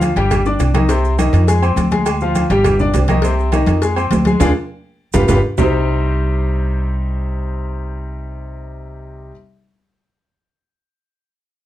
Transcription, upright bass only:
Already playing: D2
0.16 G1
0.60 C2
1.33 F2
1.76 D2
2.50 G1
2.94 C2
3.67 F2
4.11 D2
4.40 D2
5.14 G1
5.29 G1
5.58 C2

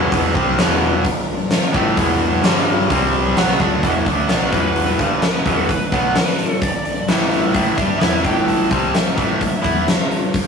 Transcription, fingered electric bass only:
Already playing: E1
0.12 E1
0.35 C2
0.59 E1
1.75 A1
1.98 E1
2.44 G1
2.90 C2
3.37 B1
3.60 D2
3.83 E1
4.07 D2
4.30 B1
4.53 E1
4.99 G1
5.23 muted fingered electric bass stroke
5.46 E1
5.69 muted fingered electric bass stroke
5.92 B1
7.08 A1
7.54 A1
7.78 G2
8.02 E2
8.25 A1
8.72 C2
8.95 muted fingered electric bass stroke
9.18 A1
9.41 muted fingered electric bass stroke
9.65 E2

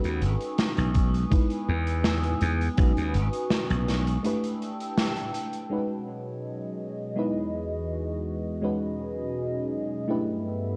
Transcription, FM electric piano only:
Already playing: G#3 C#4 D#4 F#4 B4
1.30 G#3 B3 D#4 E4 B4
2.77 G#3 C#4 D#4 F#4 B4
4.23 A3 D4 E4 G4 B4
5.69 G#3 C#4 D#4 F#4 B4
7.16 G#3 B3 D#4 E4 B4
8.62 G#3 C#4 D#4 F#4 B4
10.08 A3 D4 E4 G4 B4

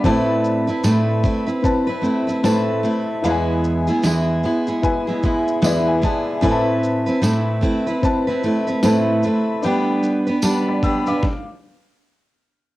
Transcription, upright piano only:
Already playing: D5 B5
0.03 C4 B4 A5
1.62 C4 B4 A5
2.43 C4 B4 A5
3.22 E4 B4 F5
3.31 G#5
4.82 E4 B4 G#5
5.63 E4 B4 D5 E5
5.88 G#5
6.04 A5
6.42 C4 B4 G#5
6.51 A5
8.02 C4 B4 A5
8.82 C4 B4 A5
9.61 D4 B4 G5
10.43 A5
10.68 D5 B5
10.83 G5 E6
11.07 F5 D6

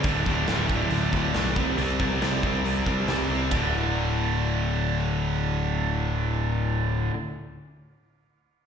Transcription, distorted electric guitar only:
0.03 D2 A2 D3
0.26 D2 A2 D3
0.48 D2 A2 D3
0.68 D2 A2 D3
0.91 D2 A2 D3
1.13 D2 A2 D3
1.35 D2 A2 D3
1.56 C3 G3 C4
1.77 C3 G3 C4
2.00 C3 G3 C4
2.20 C3 G3 C4
2.42 C3 G3 C4
2.64 C3 G3 C4
2.86 C3 G3 C4
3.08 C3 G3 C4
3.30 C3 G3 C4
3.50 D2 A2 D3

